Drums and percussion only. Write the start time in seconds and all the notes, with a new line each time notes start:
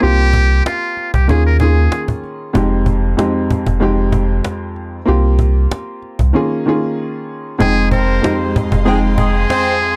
0.02 cajon slap
0.33 cajon bass
0.66 cajon slap
0.97 cajon slap
1.14 cajon bass
1.29 cajon bass, cajon slap
1.60 cajon bass
1.92 cajon slap
2.08 cajon bass
2.24 cajon slap
2.55 cajon bass
2.86 cajon bass
3.19 cajon slap
3.51 cajon bass
3.66 cajon bass
3.82 cajon slap
4.12 cajon bass
4.45 cajon slap
4.76 cajon slap
5.08 cajon slap
5.39 cajon bass
5.71 cajon slap
6.02 cajon slap
6.19 cajon bass
7.60 cajon bass
7.91 cajon bass
8.24 cajon slap
8.56 cajon bass
8.72 cajon bass
9.18 cajon bass
9.50 cajon slap
9.82 cajon slap